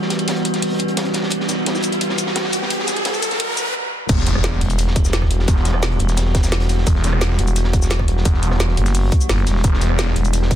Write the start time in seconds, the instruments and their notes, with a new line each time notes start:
Already playing: synth drone E3 G3 B3 F#4, riser
0.02 snare
0.10 snare, closed hi-hat
0.19 closed hi-hat
0.28 snare, closed hi-hat
0.36 closed hi-hat
0.45 closed hi-hat
0.54 snare, closed hi-hat
0.62 closed hi-hat, open hi-hat
0.79 closed hi-hat
0.88 closed hi-hat
0.97 snare, closed hi-hat
1.05 closed hi-hat
1.14 snare, closed hi-hat
1.23 snare
1.30 closed hi-hat
1.40 snare
1.49 snare, closed hi-hat, cabasa
1.66 snare, closed hi-hat
1.75 snare, cabasa
1.82 closed hi-hat, cabasa
1.92 closed hi-hat
2.01 closed hi-hat
2.09 snare
2.18 closed hi-hat, cabasa
2.27 snare
2.36 snare, closed hi-hat
2.44 snare
2.53 closed hi-hat, cabasa
2.62 snare
2.70 closed hi-hat
2.79 snare
2.87 snare, closed hi-hat, cabasa
2.96 closed hi-hat
3.05 snare, closed hi-hat
3.14 closed hi-hat, cabasa
3.23 closed hi-hat, cabasa
3.31 snare, closed hi-hat
3.40 closed hi-hat, open hi-hat
3.57 closed hi-hat, cabasa
3.65 closed hi-hat
4.09 detuned saw bass E1, synth drone E3 G3 B3 F#4, kick, closed hi-hat, crash, impact, cabasa
4.18 snare
4.26 snare, closed hi-hat, cabasa
4.35 cross-stick
4.44 snare, closed hi-hat, cabasa
4.53 snare
4.61 fm bass E1, closed hi-hat
4.70 closed hi-hat, cabasa
4.79 closed hi-hat, cabasa
4.87 snare
4.96 kick, closed hi-hat, cabasa
5.05 snare, cabasa
5.13 snare, closed hi-hat, cabasa
5.22 kick, cross-stick, snare
5.31 closed hi-hat
5.39 snare
5.48 detuned saw bass E1, kick, closed hi-hat, cabasa
5.56 snare
5.65 snare, closed hi-hat, cabasa
5.74 cross-stick
5.82 snare, closed hi-hat, cabasa
5.91 closed hi-hat
5.99 fm bass E1, closed hi-hat
6.08 snare, closed hi-hat, cabasa
6.17 snare, closed hi-hat, cabasa
6.26 snare
6.35 kick, snare, closed hi-hat, cabasa
6.43 snare, closed hi-hat, cabasa
6.52 snare, closed hi-hat, cabasa
6.60 snare, closed hi-hat
6.69 snare, closed hi-hat, cabasa
6.78 snare
6.87 detuned saw bass E1, kick, closed hi-hat, cabasa
6.96 snare
7.04 snare, closed hi-hat, cabasa
7.13 cross-stick
7.21 snare, closed hi-hat, cabasa
7.30 snare
7.39 fm bass E1, closed hi-hat
7.47 closed hi-hat, cabasa
7.56 closed hi-hat, cabasa
7.64 snare
7.73 kick, closed hi-hat, cabasa
7.82 snare, cabasa
7.90 snare, closed hi-hat, cabasa
7.98 kick, cross-stick, snare
8.08 closed hi-hat
8.17 snare
8.25 detuned saw bass E1, kick, closed hi-hat, cabasa
8.34 snare
8.43 closed hi-hat, cabasa
8.51 cross-stick, snare
8.60 snare, closed hi-hat, cabasa
8.68 snare
8.77 fm bass F#1, closed hi-hat
8.86 snare, closed hi-hat, cabasa
8.95 closed hi-hat, open hi-hat, cabasa
9.12 kick, closed hi-hat, cabasa
9.21 closed hi-hat, cabasa
9.29 fm bass F#1, snare, closed hi-hat, cabasa
9.38 closed hi-hat
9.46 fm bass E1, snare, closed hi-hat, cabasa
9.56 snare
9.64 detuned saw bass E1, synth drone D4, kick, closed hi-hat, cabasa
9.74 snare
9.81 snare, closed hi-hat, cabasa
9.90 cross-stick
9.99 snare, closed hi-hat, cabasa
10.07 snare
10.16 fm bass E1, closed hi-hat
10.24 closed hi-hat, cabasa
10.33 closed hi-hat, cabasa
10.42 snare
10.51 kick, closed hi-hat, cabasa